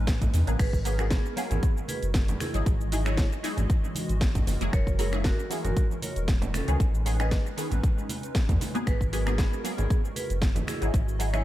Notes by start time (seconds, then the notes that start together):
Already playing: A1 D#3 G#3 B3 C#4 D#4 G#4 B4
0.07 kick, snare, closed hi-hat, shaker
0.22 kick, closed hi-hat, low conga, shaker
0.34 E2, open hi-hat, high conga, shaker
0.47 A1 F#3 A#3 B3 G#4, closed hi-hat, shaker
0.59 G#1 F#4 G#4 A#4 B4, finger snap, kick, closed hi-hat, crash, shaker
0.73 kick, shaker
0.85 F#3 A#3 B3 G#4 B4, open hi-hat, shaker
0.98 F#3 A#3 B3 G#4, finger snap, closed hi-hat, high bongo, shaker
1.11 B3 G#4, kick, snare, closed hi-hat, high bongo, shaker
1.26 shaker
1.36 F#3 A#3 B3 G#4, open hi-hat, high bongo, shaker
1.51 G#1 B3 G#4, closed hi-hat, low conga, shaker
1.63 kick, closed hi-hat, shaker
1.77 shaker
1.88 G#4 B4, open hi-hat, high conga, shaker
2.03 F#1, closed hi-hat, shaker
2.14 kick, snare, closed hi-hat, shaker
2.28 closed hi-hat, low conga, shaker
2.40 E3 E4 G#4 D#5, finger snap, open hi-hat, high conga, shaker
2.54 G#1 F#3 D#4 E4 G#4, closed hi-hat, shaker
2.66 G#1, kick, closed hi-hat, shaker
2.81 shaker
2.92 F#3 D#4 E4 G#4, open hi-hat, shaker
3.05 F#3 D#4 E4 G#4 C#5, finger snap, closed hi-hat, high bongo, shaker
3.17 kick, snare, closed hi-hat, high bongo, shaker
3.33 shaker
3.43 F#3 D#4 E4 G#4, open hi-hat, shaker
3.57 G#1, closed hi-hat, low conga, shaker
3.70 kick, closed hi-hat, shaker
3.84 shaker
3.95 open hi-hat, high conga, shaker
4.09 G#1, closed hi-hat, shaker
4.21 kick, snare, closed hi-hat, shaker
4.35 kick, closed hi-hat, low conga, shaker
4.47 F#1 A#4, open hi-hat, high conga, shaker
4.61 F#1 F#3 A#3 E4 G#4, closed hi-hat, shaker
4.73 F#1 A#4 C#5, finger snap, kick, closed hi-hat, shaker
4.87 kick, shaker
4.99 F#3 A#3 E4 G#4 A#4 C#5, open hi-hat, shaker
5.12 F#3 A#3 E4 G#4, finger snap, closed hi-hat, high bongo, shaker
5.24 F#4 A#4, kick, snare, closed hi-hat, high bongo, shaker
5.39 shaker
5.50 F#3 A#3 E4 G#4, open hi-hat, high bongo, shaker
5.64 F#1 F#4 A#4, closed hi-hat, low conga, shaker
5.77 kick, closed hi-hat, shaker
5.91 shaker
6.02 A#4 C#5, open hi-hat, high conga, shaker
6.16 E1, closed hi-hat, shaker
6.28 kick, snare, closed hi-hat, shaker
6.42 closed hi-hat, low conga, shaker
6.54 C#4 A4, finger snap, open hi-hat, high conga, shaker
6.67 C#2 D#3 B3 C#4 G#4, closed hi-hat, shaker
6.80 A1 C#4 D#4 B4, kick, closed hi-hat, shaker
6.95 shaker
7.05 D#3 B3 C#4 G#4, open hi-hat, shaker
7.19 D#3 B3 C#4 G#4 B4 D#5, finger snap, closed hi-hat, high bongo, shaker
7.31 kick, snare, closed hi-hat, high bongo, shaker
7.46 shaker
7.57 D#3 B3 C#4 G#4, open hi-hat, shaker
7.71 A1, closed hi-hat, low conga, shaker
7.83 kick, closed hi-hat, shaker
7.98 shaker
8.09 open hi-hat, high conga, shaker
8.23 closed hi-hat, shaker
8.35 kick, snare, closed hi-hat, shaker
8.49 E2, kick, closed hi-hat, low conga, shaker
8.61 open hi-hat, high conga, shaker
8.74 F#3 A#3 B3 G#4, closed hi-hat, shaker
8.87 G#1 G#3 F#4 G#4 A#4 B4, finger snap, kick, closed hi-hat, shaker
9.01 kick, shaker
9.12 F#3 A#3 B3 G#4 B4, open hi-hat, shaker
9.26 F#3 A#3 B3 G#4, finger snap, closed hi-hat, high bongo, shaker
9.38 B3 G#4, kick, snare, closed hi-hat, high bongo, shaker
9.53 shaker
9.64 F#3 A#3 B3 G#4, open hi-hat, high bongo, shaker
9.78 G#1 B3 G#4, closed hi-hat, low conga, shaker
9.90 kick, closed hi-hat, shaker
10.05 shaker
10.16 G#4 B4, open hi-hat, high conga, shaker
10.30 F#1, closed hi-hat, shaker
10.42 kick, snare, closed hi-hat, shaker
10.56 closed hi-hat, low conga, shaker
10.67 E3 E4 G#4 D#5, finger snap, open hi-hat, high conga, shaker
10.81 G#1 F#3 D#4 E4 G#4, closed hi-hat, shaker
10.94 G#1, kick, closed hi-hat, shaker
11.08 shaker
11.19 F#3 D#4 E4 G#4, open hi-hat, shaker
11.33 F#3 D#4 E4 G#4 C#5, finger snap, closed hi-hat, high bongo, shaker